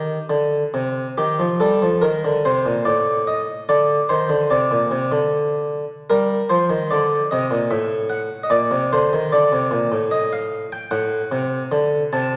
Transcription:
Already playing: D#3 G4
0.30 D3
0.74 C3
1.18 D#3 G4
1.39 F3
1.60 G3 A4
1.82 F3
2.02 D#3 A#4
2.25 D3
2.45 C3 C5
2.66 A#2
2.85 A2 D5
3.27 D#5
3.69 D3 D5
4.09 D#3 C5
4.29 D3
4.50 C3 D5
4.71 A#2
4.91 C3
5.12 D3
6.10 G3 A#4
6.50 F3 C5
6.70 D#3
6.91 D3 D5
7.31 C3 D#5
7.51 A#2
7.71 A2 E5
8.10 F#5
8.44 D#5
8.50 A#2 D5
8.71 C3
8.93 D3 C5
9.13 D#3
9.32 D3 D5
9.52 C3
9.71 A#2
9.92 A2
10.11 D#5
10.33 F5
10.72 G5
10.91 A2 F#5
11.32 C3
11.72 D3
12.13 C3 A5

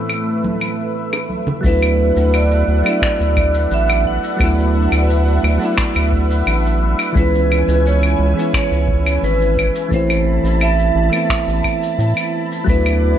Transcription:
Already playing: A2 E3 A3 B3 C4 E4 B4 E5
0.09 claves
0.44 high conga
0.61 claves
1.13 high bongo, claves
1.30 high conga
1.47 high bongo, low conga
1.61 D2 F#3 A3 B3 B4 F#5, kick, shaker
1.65 D4 E4 B4 E5, open hi-hat
1.82 open hi-hat, claves, shaker
2.16 D2, open hi-hat, shaker
2.33 D5, open hi-hat, claves, shaker
2.51 shaker
2.68 D2
2.82 F#3 A3 B3, open hi-hat, claves, shaker
2.88 D4 E4
3.02 D5, finger snap, kick, open hi-hat, shaker
3.20 D2, shaker
3.36 kick, claves
3.54 open hi-hat, shaker
3.71 A1 E5, open hi-hat, shaker
3.89 open hi-hat, claves, shaker
4.05 F#5, kick
4.24 open hi-hat, shaker
4.37 D2 F#3 A3 B3, kick, open hi-hat, claves, shaker
4.42 D4 E4
4.58 open hi-hat, shaker
4.92 D2, open hi-hat, claves, shaker
5.09 open hi-hat, shaker
5.28 shaker
5.44 D2, claves
5.58 F#3 A3 B3, open hi-hat, shaker
5.63 D4 E4
5.78 finger snap, kick, open hi-hat, shaker
5.96 D2, claves, shaker
6.12 kick
6.31 open hi-hat, shaker
6.47 A1, open hi-hat, claves, shaker
6.64 open hi-hat, shaker
6.99 open hi-hat, claves, shaker
7.13 C#2 E3 G#3 B3 C#4 G#5, kick
7.17 C#4 E4 B4, open hi-hat, shaker
7.34 open hi-hat, shaker
7.52 claves
7.68 C#2, open hi-hat, shaker
7.86 C#5, open hi-hat, shaker
8.03 claves, shaker
8.19 C#2
8.34 E3 G#3 B3
8.38 C#4 E4, open hi-hat, shaker
8.54 C#5, finger snap, kick, open hi-hat, claves, shaker
8.71 C#2, shaker
8.88 kick
9.06 open hi-hat, claves, shaker
9.22 G#1 B4, open hi-hat, shaker
9.41 open hi-hat, shaker
9.57 kick, claves
9.75 open hi-hat, shaker
9.88 A1 E3 A3 E4 A5 B5, kick, shaker
9.93 C4 E4 C5, open hi-hat
10.10 open hi-hat, claves, shaker
10.44 A1, open hi-hat, shaker
10.61 E5, open hi-hat, claves, shaker
10.79 shaker
10.95 A1
11.10 E3 A3 B3, claves, shaker
11.14 C4 E4, open hi-hat
11.30 finger snap, kick, open hi-hat, shaker
11.47 A1, shaker
11.64 kick, claves
11.83 open hi-hat, shaker
11.98 A2, open hi-hat, shaker
12.16 open hi-hat, claves, shaker
12.52 open hi-hat, shaker
12.64 D2 F#3 A3 B3 D5 F#5, kick, open hi-hat, shaker
12.69 D4 E4 B4
12.85 open hi-hat, claves, shaker

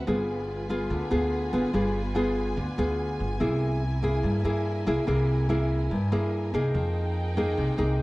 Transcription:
0.06 G1 G3 B3 F4 G#4 B4 G#5
0.69 B3 F4 G#4
0.90 D2 D3
1.11 D2 B3 F4 G#4
1.53 G1 B3 F4 G#4
1.73 G1 G3 B3 F4 G#4
2.15 B3 F4 G#4
2.57 D2 D3
2.78 D2 B3 F4 G#4
3.20 G1
3.40 C2 C3 A#3 E4 G#4 A#4
4.03 A#3 E4 G#4
4.23 G2
4.44 G2 A#3 E4 G#4
4.87 C2 A#3 E4 G#4
5.07 C2 C3 A#3 E4 G#4
5.49 A#3 E4 G#4
5.91 G2
6.12 G2 A#3 E4 G#4
6.54 C2 A#3 D#4 G#4
6.74 F2 F3 D#4 G#4 G5
7.37 A#3 D#4 G#4
7.57 C2 C3
7.78 C2 A#3 D#4 G#4

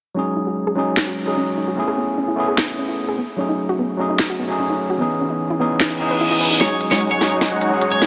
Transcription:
0.15 F#3 G#3 C#4 D#4
0.19 G#4
0.37 D#4
0.47 F#4
0.67 G#4
0.75 F#3 G#3 C#4 D#4
0.79 G#4
0.97 D#4, snare, clap
1.07 F#4
1.25 F#3 G#3 C#4 D#4 G#4
1.29 G#4
1.37 C#4
1.58 D#4
1.68 F#4
1.75 A3 B3 C#4 E4
1.80 G#4
1.88 G#4
1.98 B3
2.18 C#4
2.28 E4
2.36 A3 B3 C#4 E4 G#4
2.48 G#4
2.58 B3, snare, clap
2.78 C#4
2.88 E4
3.08 G#4
3.18 B3
3.37 F#3 A3 C#4 D#4
3.41 G#4
3.49 D#4
3.69 F#4
3.79 B3
3.97 F#3 A3 C#4 D#4 G#4
4.10 D#4
4.19 snare, clap
4.30 F#4
4.39 B3
4.48 F#3 A3 C#4 D#4 G#4
4.60 C#4
4.70 D#4
4.90 F#4
4.98 E3 B3 C#4 D#4
5.02 G#4
5.20 C#4
5.30 D#4
5.50 E4
5.59 E3 B3 C#4 D#4 G#4
5.80 C#4, snare, clap, reverse cymbal
5.90 D#4
5.99 E3 B3 C#4 D#4 G#4
6.11 B4
6.21 E4
6.30 E3 B3 C#4 D#4 E4 G#4
6.41 B4
6.51 D#4
6.59 F#3 G#3 C#4 D#4 F#4 C#5 G#5, snare, closed hi-hat, riser
6.63 G#4
6.81 closed hi-hat
6.91 G#3 D#4 F#4 C#5 G#5, snare
7.01 closed hi-hat
7.11 C#5, closed hi-hat
7.19 F#3 G#3 C#4 D#4 F#4 G#4 C#5 G#5, snare, closed hi-hat
7.24 closed hi-hat
7.28 closed hi-hat
7.41 snare, closed hi-hat
7.52 G#3 D#4 F#4 C#5 F#5
7.61 closed hi-hat
7.69 F#3 G#3 C#4 D#4 G#4
7.82 G#3 D#4 F#4 C#5 C#6, closed hi-hat
7.91 C#5
8.02 snare, closed hi-hat

